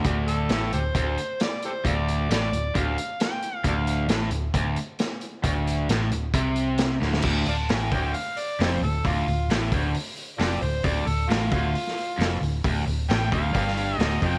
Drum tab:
CC |----------------|----------------|----------------|----------------|
HH |x-x-x-x-x-x-x-x-|x-x-x-x-x-x-x-x-|x-x-x-x-x-x-x-x-|x-x-x-x-x-x-x---|
SD |----o-------o---|----o-------o---|----o-------o---|----o-------o-oo|
BD |o-------o-------|o-------o-------|o-------o-------|o-------o-------|

CC |x---------------|----------------|----------------|----------------|
HH |--o-o-o-o-o-o-o-|o-o-o-o-o-o-o-o-|o-o-o-o-o-o-o-o-|o-o-o-o-o-o-o-o-|
SD |----o-------o---|----o-------o---|----o----o--o---|----o----o--o---|
BD |o-----o---------|o-----o---------|o-----o---------|o-----o-o-----o-|